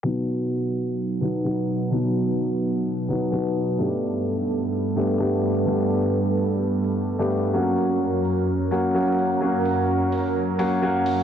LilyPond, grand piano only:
\new Staff \with { instrumentName = "Grand piano" } { \time 4/4 \key b \major \tempo 4 = 128 <b, fis b dis' fis'>2~ <b, fis b dis' fis'>8 <b, fis b dis' fis'>8 <b, fis b dis' fis'>4 | <b, fis b dis' fis'>2~ <b, fis b dis' fis'>8 <b, fis b dis' fis'>8 <b, fis b dis' fis'>4 | <g, a b d' g'>2~ <g, a b d' g'>8 <g, a b d' g'>8 <g, a b d' g'>4 | <g, a b d' g'>2~ <g, a b d' g'>8 r8. <g, a b d' g'>16 r8 |
<fis ais cis' fis'>2~ <fis ais cis' fis'>8 <fis ais cis' fis'>8 <fis ais cis' fis'>4 | <fis ais cis' fis'>2~ <fis ais cis' fis'>8 <fis ais cis' fis'>8 <fis ais cis' fis'>4 | }